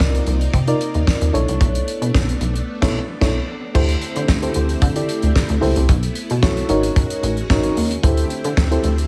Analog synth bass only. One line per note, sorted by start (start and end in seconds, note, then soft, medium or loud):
0.00 0.20 C2 medium
0.27 0.47 C2 medium
0.53 0.74 C3 loud
0.95 1.04 D#2 medium
1.21 1.31 D#2 loud
1.34 1.45 B1 loud
1.48 1.58 C2 medium
1.61 1.81 B1 loud
2.02 2.11 B2 loud
2.15 2.35 B1 medium
2.41 2.61 B1 medium
2.82 3.00 B1 loud
3.21 3.40 B1 loud
3.75 3.95 D2 loud
4.16 4.26 D3 medium
4.29 4.49 D2 medium
4.56 4.76 D2 medium
4.82 5.02 D3 loud
5.23 5.32 D2 loud
5.50 5.59 D2 medium
5.62 5.73 C#2 medium
5.77 5.86 C2 medium
5.89 6.09 B1 loud
6.31 6.44 B2 medium
6.42 6.63 B1 medium
6.70 6.90 G#1 medium
7.23 7.43 A1 medium
7.50 7.70 A1 loud
7.77 7.97 D#2 medium
8.04 8.24 D2 loud
8.45 8.54 D3 medium
8.57 8.77 D2 medium
8.84 9.07 D2 medium